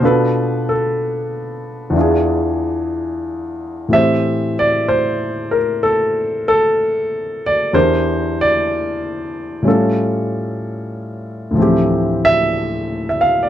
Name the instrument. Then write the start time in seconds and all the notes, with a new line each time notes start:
grand piano
0.00 B2 B3 D4 F4
0.05 A4 B4
0.69 A4
1.90 E2 E3
1.96 D4 F4
2.01 G#4
3.88 A2 E3 C4
3.93 G4 C5 E5
4.59 D5
4.88 C5
5.51 A#4
5.83 A4
6.48 A4
7.46 D5
7.73 E2 E3 D4 G4 A#4 C5
8.41 D5
9.62 A2 G3 C#4
9.67 F4 A4
11.51 D2 A2
11.55 F3 C4
11.60 E3 G4
12.25 E5
13.09 E5
13.21 F5
13.43 D5